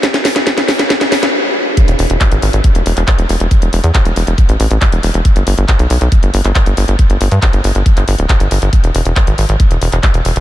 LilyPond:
<<
  \new Staff \with { instrumentName = "Analog synth bass" } { \clef bass \time 4/4 \tempo 4 = 138 r1 | r16 e,,16 e,,16 e,,16 r16 gis,,16 gis,,16 gis,,16 r16 e,,16 e,,16 e,,16 r16 e,,16 e,,16 e,,16 | r16 e,,16 e,,16 e,16 r16 e,,16 e,,16 e,,16 r16 a,,16 a,,16 a,,16 r16 e,,16 e,,16 e,,16 | r16 g,,16 g,,16 g,,16 r16 b,,16 b,,16 b,,16 r16 g,,16 g,,16 g,,16 r16 g,,16 g,,16 g,,16 |
r16 g,,16 g,,16 g,16 r16 g,,16 g,,16 g,,16 r16 g,,16 g,,16 d,,16 r16 g,,16 g,,16 g,,16 | r16 e,,16 e,,16 e,,16 r16 gis,,16 gis,,16 gis,,16 r16 e,,16 e,,16 e,,16 r16 e,,16 e,,16 e,,16 | }
  \new DrumStaff \with { instrumentName = "Drums" } \drummode { \time 4/4 <hh bd sn>16 <hh sn>16 <hho sn>16 <hh sn>16 <hh bd sn>16 <hh sn>16 <hho sn>16 <hh sn>16 <hh bd sn>16 <hh sn>16 <hho sn>16 <hh sn>16 r4 | <hh bd>16 hh16 hho16 hh16 <hc hh bd>16 hh16 hho16 hh16 <hh bd>16 hh16 hho16 <hc hh>16 <hc hh bd>16 hh16 hho16 hh16 | <hh bd>16 hh16 hho16 hh16 <hc hh bd>16 hh16 hho16 hh16 <hh bd>16 hh16 hho16 hh16 <hc hh bd>16 hh16 hho16 hh16 | <hh bd>16 hh16 hho16 hh16 <hc hh bd>16 hh16 hho16 hh16 <hh bd>16 hh16 hho16 <hc hh>16 <hc hh bd>16 hh16 hho16 hh16 |
<hh bd>16 hh16 hho16 hh16 <hc hh bd>16 hh16 hho16 hh16 <hh bd>16 <hc hh>16 hho16 hh16 <hc hh bd>16 hh16 hho16 hh16 | <hh bd>16 hh16 hho16 hh16 <hc hh bd>16 hh16 hho16 hh16 <hh bd>16 hh16 hho16 <hc hh>16 <hc hh bd>16 hh16 hho16 hh16 | }
>>